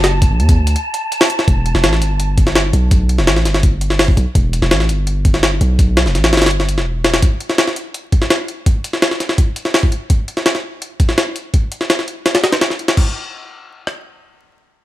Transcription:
Already playing: F#1 A5
0.04 snare, closed hi-hat
0.22 kick, closed hi-hat
0.31 B1
0.40 E2, closed hi-hat
0.49 kick, closed hi-hat
0.58 D2
0.67 closed hi-hat
0.76 closed hi-hat
0.94 closed hi-hat
1.12 closed hi-hat
1.21 snare, open hi-hat
1.30 closed hi-hat
1.39 snare
1.48 E1, kick, closed hi-hat
1.66 closed hi-hat
1.75 E1, snare
1.84 A1, snare, closed hi-hat
1.93 snare
2.02 G1, closed hi-hat
2.20 closed hi-hat
2.38 kick, closed hi-hat
2.47 snare
2.55 snare, closed hi-hat
2.73 B1, closed hi-hat
2.91 kick, closed hi-hat
3.09 closed hi-hat
3.18 E1, snare
3.27 A1, snare, closed hi-hat
3.36 snare
3.45 G1, snare, closed hi-hat
3.54 snare
3.63 kick, closed hi-hat
3.81 closed hi-hat
3.90 snare
3.99 snare, open hi-hat
4.08 kick
4.17 B1, closed hi-hat
4.35 E1, kick, closed hi-hat
4.53 closed hi-hat
4.62 E1, snare
4.71 A1, snare, closed hi-hat
4.80 snare
4.89 G1, closed hi-hat
5.07 closed hi-hat
5.25 kick, closed hi-hat
5.34 snare
5.43 snare, closed hi-hat
5.61 B1, closed hi-hat
5.79 kick, closed hi-hat
5.97 snare, closed hi-hat
6.06 E1, snare
6.15 A1, snare, closed hi-hat
6.24 snare, closed hi-hat
6.33 G1, snare, closed hi-hat
6.37 snare, closed hi-hat
6.42 snare, closed hi-hat
6.46 snare, closed hi-hat
6.51 closed hi-hat
6.60 snare
6.69 closed hi-hat
6.78 E1, snare
7.04 snare, closed hi-hat
7.14 snare, closed hi-hat
7.22 kick, closed hi-hat
7.41 closed hi-hat
7.50 snare
7.58 snare, closed hi-hat
7.68 snare
7.76 closed hi-hat
7.94 closed hi-hat
8.12 kick, closed hi-hat
8.22 snare
8.30 snare, closed hi-hat
8.48 closed hi-hat
8.66 kick, closed hi-hat
8.84 closed hi-hat
8.93 snare
9.02 snare, closed hi-hat
9.11 snare
9.20 snare, closed hi-hat
9.29 snare
9.38 kick, closed hi-hat
9.56 closed hi-hat
9.65 snare
9.74 snare, open hi-hat
9.83 kick
9.92 closed hi-hat
10.10 kick, closed hi-hat
10.28 closed hi-hat
10.37 snare
10.46 snare, closed hi-hat
10.55 snare
10.82 closed hi-hat
11.00 kick, closed hi-hat
11.09 snare
11.18 snare, closed hi-hat
11.36 closed hi-hat
11.54 kick, closed hi-hat
11.72 closed hi-hat
11.81 snare
11.90 snare, closed hi-hat
11.99 snare
12.08 closed hi-hat
12.26 snare, closed hi-hat
12.35 snare, closed hi-hat
12.44 snare, closed hi-hat
12.52 snare, closed hi-hat
12.61 snare, closed hi-hat
12.70 snare
12.79 closed hi-hat
12.88 snare, closed hi-hat
12.97 kick, crash
13.87 cross-stick

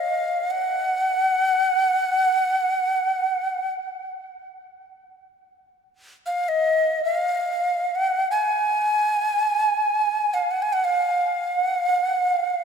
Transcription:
Already playing: F5
0.50 F#5
6.26 F5
6.48 D#5
7.04 F5
7.95 F#5
8.31 G#5
10.34 F5
10.51 F#5
10.62 G#5
10.73 F#5
10.84 F5
11.62 F#5
11.78 F5
12.04 F#5
12.20 F5

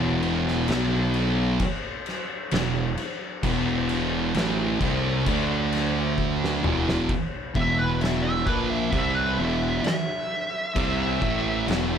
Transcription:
Already playing: E1 E2 B2 E3
0.23 crash
0.48 snare
0.68 B1 B2 F#3 B3, snare, crash
1.14 crash
1.60 kick, crash
2.06 snare, crash
2.51 E1 E2 B2, snare, crash
2.97 crash
3.43 E1 E2 B2 E3, kick, crash
3.89 crash
4.34 A1 A2 E3 A3, snare, crash
4.81 C2 C3 G3 C4, kick, crash
5.26 D2 D3 A3 D4, kick, crash
5.72 snare, crash
6.18 kick
6.44 snare
6.63 E1 E2 B2 E3, mid tom
6.89 snare
7.09 kick, crash
7.54 E1 E2 B2 E3 E5, kick
7.79 B4
8.01 E5, snare, crash
8.23 E5
8.46 A#1 A#2 F3 A#3 B4, kick
8.70 E5
8.92 C2 C3 G3 C4 E5, kick, crash
9.15 B4
9.38 E1 E2 B2 E3 E5
9.84 E5, muted distorted electric guitar stroke, muted fingered electric bass stroke, snare, crash
10.75 C2 C3 G3 C4, kick, crash
11.21 A1 A2 E3 A3, kick
11.66 E1 E2 B2 E3, crash
11.71 snare

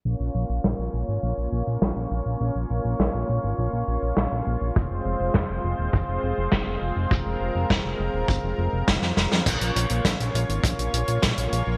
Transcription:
0.05 A#1 A#3 C#4 F4 C#5
0.20 A#1
0.35 A#1
0.49 A#1
0.64 A#1, snare
0.79 A#1
0.94 A#1
1.08 G#1
1.23 A#1
1.38 A#1
1.52 A#1
1.67 A#1
1.82 A#1, snare
1.96 A#1
2.11 A#1
2.26 A#1
2.41 A#1
2.55 A#1
2.70 A#1
2.85 A#1
3.00 A#1, snare
3.14 A#1
3.29 A#1
3.44 G#1
3.58 A#1
3.73 A#1
3.88 A#1
4.03 A#1
4.17 A#1, snare
4.32 A#1
4.47 A#1
4.61 A#1
4.76 F1 G#3 C4 C5, kick
4.91 F1
5.05 F1
5.20 F1
5.34 F1, kick, snare
5.49 F1
5.64 F1
5.79 D#1
5.93 F1, kick
6.08 F1
6.23 F1
6.38 F1
6.52 F1, kick, snare
6.67 F1
6.82 F1
6.96 F1
7.11 F1 A#4, kick
7.26 F1
7.41 F1
7.55 F1
7.70 F1, kick, snare
7.85 F1
7.99 F1
8.14 D#1
8.28 F1, kick
8.44 F1
8.58 F1
8.73 F1
8.88 F1, kick, snare
9.02 F2, snare
9.17 F1, snare
9.32 F2, snare
9.46 A#1 A#3 C#4 F4 C#5, kick, closed hi-hat, crash
9.61 A#1, closed hi-hat
9.76 A#1, closed hi-hat
9.90 A#1, closed hi-hat
10.05 A#1, kick, snare, closed hi-hat
10.20 A#1, closed hi-hat
10.35 A#1, closed hi-hat
10.49 G#1, closed hi-hat
10.63 A#1, kick, closed hi-hat
10.79 A#1, closed hi-hat
10.93 A#1, closed hi-hat
11.08 A#1, closed hi-hat
11.23 A#1, kick, snare, closed hi-hat
11.38 A#1, closed hi-hat
11.52 A#1, closed hi-hat
11.67 A#1

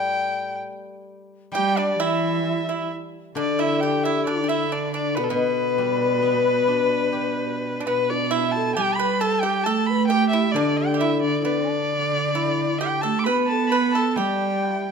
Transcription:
Already playing: A2 G3 G5
1.52 G3 G4 G5
1.56 G3
1.77 D4 D5
1.99 E3 E4 E5
2.69 E4
3.35 D3 D4 D5
3.59 E4 E5
3.80 G4 G5
4.04 E4 E5
4.25 D3 D4 D5
4.44 G4
4.48 E4 E5
4.72 D4 D5
4.94 D4 D5
5.15 B2 B3 B4
5.24 A4
5.30 B2 B3 B4
5.78 G3
6.22 B3
6.68 D4
7.12 G4
7.80 D4
7.85 B3 B4
7.89 B2
8.10 D4 D5
8.31 E4 E5
8.52 A4 A5
8.75 G3 G4 G5
8.95 B5
8.99 B4
9.21 A4 A5
9.40 G4 G5
9.64 A3 A4 A5
9.86 B4 B5
10.07 G4 G5
10.12 G4
10.29 E4 E5
10.52 D3 D5
10.56 D4
10.77 G4 G5
10.94 G4
10.99 E4 E5
11.21 D3 D4 D5
11.38 E4
11.44 D3 B3 D4 D5
11.72 D4
12.35 E4
12.79 G4 G5
13.02 A3 A4 A5
13.19 D6
13.24 B3 B4 B5
13.43 A5 B5
13.50 A4
13.68 B4 B5
13.92 A4 A5
14.11 A5
14.16 G3 G4 G5
14.77 E4

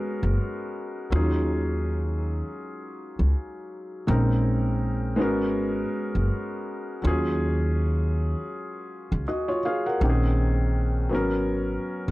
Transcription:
Already playing: G#3 B3 C#4 F#4 A#4
0.23 F#1
1.10 D#2 F#3 C#4 D#4
1.14 F4 G#4
3.19 C#2
4.07 A#1 G#3 C4 C#4 D#4 A#4
5.16 G#1 G#3 B3 C#4
5.20 F#4 A#4
6.15 F#1
7.02 D#2 F#3 C#4 F4
7.07 G#4
9.12 C#2
9.28 F#4 D#5
9.48 F4 C#5
9.65 G#4 F5
9.86 A#4 F#5
10.00 A#1 D#3 C4 C#4 G4
10.09 G#4
11.09 G#1 F#3 B3 C#4
11.14 A#4
12.08 F#1

